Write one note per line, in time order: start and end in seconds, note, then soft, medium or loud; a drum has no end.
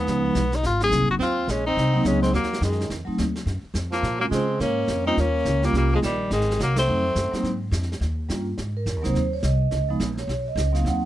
0.00 0.21 F3 medium
0.00 0.22 G#3 medium
0.00 0.22 B3 medium
0.00 0.56 B3 medium
0.00 0.22 D#4 medium
0.07 0.34 C#2 medium
0.07 brush sweep medium
0.07 snare soft
0.23 0.34 F3 medium
0.23 0.34 G#3 medium
0.23 0.34 B3 medium
0.23 0.35 D#4 medium
0.35 0.63 B1 medium
0.35 snare medium
0.35 hi-hat pedal soft
0.52 0.65 D#4 medium
0.52 snare soft
0.63 0.90 G#1 medium
0.63 0.81 F4 medium
0.63 brush sweep soft
0.63 snare soft
0.80 1.18 F#3 medium
0.80 1.18 A#3 medium
0.80 1.18 C4 medium
0.80 1.19 D#4 medium
0.80 1.09 G#4 loud
0.80 snare soft
0.91 1.02 C2 medium
0.91 snare medium
0.91 hi-hat pedal medium
1.00 1.09 G#1 medium
1.10 1.18 F#1 medium
1.10 1.15 F#4 medium
1.19 1.47 D#2 medium
1.19 1.50 C4 medium
1.19 1.52 F4 medium
1.19 brush sweep soft
1.19 snare soft
1.47 1.75 A#1 medium
1.47 1.66 G#3 medium
1.47 1.66 C#4 medium
1.47 snare medium
1.47 hi-hat pedal medium
1.66 2.07 C4 medium
1.66 2.08 D#4 medium
1.77 2.04 C2 medium
1.77 brush sweep medium
1.77 snare soft
1.93 2.31 F#3 medium
1.93 2.31 A#3 medium
1.93 2.31 C4 medium
1.93 2.31 D#4 medium
2.04 2.32 C#2 medium
2.04 2.21 G#3 medium
2.04 2.22 C#4 medium
2.04 snare medium
2.04 hi-hat pedal soft
2.21 2.32 G#3 medium
2.21 2.33 C4 medium
2.21 snare soft
2.33 2.60 D#2 medium
2.33 2.60 F#3 medium
2.33 2.61 A#3 medium
2.33 brush sweep soft
2.33 snare soft
2.43 snare soft
2.53 snare soft
2.61 2.89 F#2 medium
2.61 3.04 D#3 medium
2.61 2.89 G#3 medium
2.61 snare medium
2.61 hi-hat pedal medium
2.72 snare soft
2.81 snare soft
2.90 3.06 F2 medium
2.90 brush sweep soft
2.90 snare soft
3.05 3.16 F#3 medium
3.05 3.17 A3 medium
3.05 3.17 C4 medium
3.05 3.17 D#4 medium
3.05 muted upright bass stroke soft
3.18 3.45 D#2 medium
3.18 snare medium
3.18 hi-hat pedal medium
3.35 snare soft
3.46 3.62 F#2 medium
3.46 brush sweep medium
3.46 snare soft
3.63 muted upright bass stroke soft
3.74 4.02 F2 medium
3.74 snare medium
3.74 hi-hat pedal medium
3.91 4.18 F3 medium
3.91 4.19 A#3 medium
3.91 snare soft
4.03 4.30 A#2 medium
4.03 brush sweep medium
4.03 snare soft
4.19 4.24 F#3 medium
4.19 4.30 G#3 medium
4.19 4.26 A#3 medium
4.19 4.30 C4 medium
4.19 4.31 C#4 medium
4.19 4.31 F4 medium
4.31 4.59 C#3 medium
4.31 4.58 G#3 medium
4.31 4.59 C4 medium
4.31 snare medium
4.31 hi-hat pedal medium
4.60 4.87 G#2 medium
4.60 5.03 A#3 medium
4.60 5.03 C#4 medium
4.60 brush sweep soft
4.60 snare soft
4.88 5.16 F2 medium
4.88 snare medium
4.88 hi-hat pedal medium
5.05 5.15 G3 medium
5.05 5.16 A#3 medium
5.05 5.19 C4 medium
5.05 5.16 C#4 medium
5.05 5.22 D#4 medium
5.05 5.16 F4 medium
5.17 5.45 D#2 medium
5.17 5.65 A#3 medium
5.17 5.67 C#4 loud
5.17 brush sweep soft
5.17 snare soft
5.45 5.72 C#2 medium
5.45 snare medium
5.45 hi-hat pedal medium
5.62 6.00 G3 medium
5.62 5.74 G3 medium
5.62 6.00 A#3 medium
5.62 5.75 A#3 medium
5.62 6.00 C#4 medium
5.62 6.01 F4 medium
5.62 snare soft
5.73 6.01 C2 medium
5.73 5.91 G3 medium
5.73 brush sweep soft
5.73 snare soft
5.77 5.92 A#3 medium
5.93 5.98 F3 medium
5.93 5.99 G#3 medium
6.02 6.30 A#1 medium
6.02 6.29 D#3 medium
6.02 6.30 G3 medium
6.02 snare medium
6.02 hi-hat pedal medium
6.31 6.58 G#1 medium
6.31 6.58 D#3 medium
6.31 6.58 G#3 medium
6.31 brush sweep soft
6.31 snare soft
6.41 snare soft
6.51 snare soft
6.59 6.87 C2 medium
6.59 6.76 F#3 medium
6.59 6.77 A#3 medium
6.59 snare medium
6.59 hi-hat pedal soft
6.76 7.40 A3 medium
6.76 7.59 C4 medium
6.76 snare medium
6.76 ride medium
6.87 7.15 F2 medium
6.87 7.03 F#3 medium
6.87 7.03 A3 medium
6.87 7.03 C4 medium
6.87 7.03 D#4 medium
6.87 brush sweep soft
7.15 7.32 F#2 medium
7.15 snare medium
7.15 hi-hat pedal medium
7.32 7.42 F#3 medium
7.32 7.42 A#3 medium
7.32 7.43 C4 medium
7.32 7.43 D#4 medium
7.32 muted upright bass stroke soft
7.32 snare soft
7.43 7.71 G#2 medium
7.43 brush sweep soft
7.43 snare soft
7.71 8.00 F2 medium
7.71 snare medium
7.71 hi-hat pedal medium
7.82 snare soft
7.92 snare soft
8.00 8.28 D#2 medium
8.00 brush sweep soft
8.00 snare soft
8.29 8.57 G2 medium
8.29 8.45 G3 medium
8.29 8.45 A#3 soft
8.29 8.45 C#4 soft
8.29 8.46 F4 medium
8.29 snare medium
8.29 hi-hat pedal medium
8.58 8.85 G#2 medium
8.58 brush sweep soft
8.58 snare soft
8.77 9.02 A#4 medium
8.86 8.96 F#2 medium
8.86 snare medium
8.86 hi-hat pedal soft
8.96 9.04 D#2 medium
9.02 9.13 C2 medium
9.02 9.13 F#3 medium
9.02 9.13 A#3 medium
9.02 9.13 C4 medium
9.02 9.14 D#4 medium
9.02 9.31 C5 medium
9.02 snare soft
9.13 9.42 D#2 medium
9.13 brush sweep soft
9.13 snare soft
9.33 9.44 C#5 medium
9.43 9.71 C2 medium
9.43 9.87 D#5 medium
9.43 snare medium
9.43 hi-hat pedal medium
9.71 9.99 C#2 medium
9.71 brush sweep soft
9.71 snare soft
9.89 9.99 F3 medium
9.89 9.99 G#3 medium
9.89 10.00 B3 medium
9.89 10.00 D#4 medium
10.00 10.27 A#1 medium
10.00 snare medium
10.00 hi-hat pedal medium
10.17 10.45 C#5 medium
10.17 snare soft
10.27 10.55 B1 medium
10.27 brush sweep soft
10.27 snare soft
10.48 10.74 D#5 medium
10.55 10.84 C#2 medium
10.55 snare medium
10.55 hi-hat pedal medium
10.72 11.05 F#3 medium
10.72 11.05 A#3 medium
10.72 11.05 C4 medium
10.72 11.05 D#4 medium
10.72 10.86 F5 medium
10.72 snare soft
10.85 11.05 D#2 medium
10.85 11.05 F#5 medium
10.85 brush sweep soft
10.85 snare soft